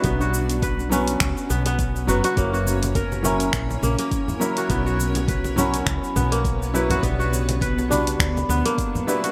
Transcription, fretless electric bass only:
X:1
M:4/4
L:1/8
Q:"Swing 16ths" 1/4=103
K:Bm
V:1 name="Fretless electric bass" clef=bass
B,,,4 C,, B,,,2 F,,, | F,,,4 ^A,,, A,,, z2 | B,,,4 C,, B,,,3 | B,,,4 D,, D,, z2 |]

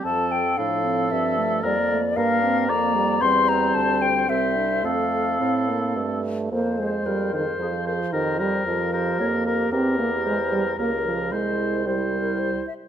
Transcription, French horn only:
X:1
M:3/4
L:1/8
Q:1/4=112
K:F
V:1 name="French horn" clef=bass
F,2 F,4 | G, A, B, C B, G, | G,4 G,2 | A,2 C B, A,2 |
[K:Fm] B, A, G, E, F,2 | E, G, F,2 B,2 | C B, A, G, B, F, | A,2 G,3 z |]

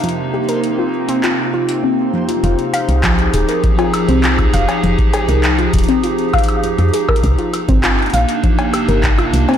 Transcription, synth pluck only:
X:1
M:4/4
L:1/16
Q:1/4=100
K:Fdor
V:1 name="Synth pluck"
F, z G B z F z C F z F z C z F, F | F z f z F, z A B z F z C F z f z | F, z A B z F z C F z f z F, z A B | z F z C F z f z F, z G B z F z C |]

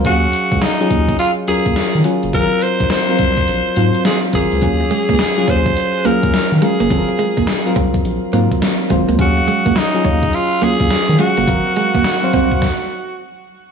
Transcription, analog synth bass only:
X:1
M:4/4
L:1/16
Q:"Swing 16ths" 1/4=105
K:Ebdor
V:1 name="Analog synth bass" clef=bass
E,,2 z D,, z2 E,,2 z2 E,, E,, z E, z G,,, | A,,, z2 B,,, z2 C,,2 B,,, z A,, z3 A,,, D,, | E,,2 z D,, z2 E,,2 z2 E,, E,, z E, z G,,, | A,,, z2 B,,, z2 C,,2 B,,, z A,, z3 A,,, D,, |
E,,2 z D,, z2 E,,2 z2 E,, E,, z E, z G,,, | A,,, z2 B,,, z2 C,,2 z8 |]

